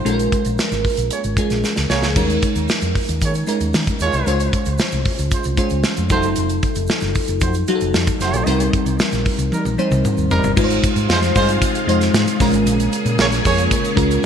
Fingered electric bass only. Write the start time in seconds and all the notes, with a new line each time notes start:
0.06 A#1
0.46 A#1
0.72 G#1
0.98 A#1
1.24 G#1
1.51 A#1
1.77 C#2
1.90 C2
2.03 C#2
2.16 D#2
2.56 D#2
2.82 F2
3.09 D#2
3.21 D#3
3.61 D#2
3.75 D#3
4.00 D#2
4.13 C2
4.27 C#2
4.67 C#2
4.93 C2
5.19 C#2
5.46 C2
5.71 C#2
5.98 F2
6.10 F1
6.25 F#1
6.38 F1
6.76 F1
7.02 F#1
7.29 F1
7.42 F2
7.82 F1
7.95 F2
8.20 F1
8.34 A#1
8.47 C2
8.86 C2
9.13 A#1
9.38 C2
9.65 A#1
9.91 C2
10.18 D#2
10.30 F1
10.44 G1
10.57 G#1
10.96 G#2
11.09 F2
11.36 G2
11.87 F2
12.13 G#2
12.40 A#1
12.53 G#1
12.66 A#1
13.05 A#2
13.18 A#1
13.46 F2
13.97 C#2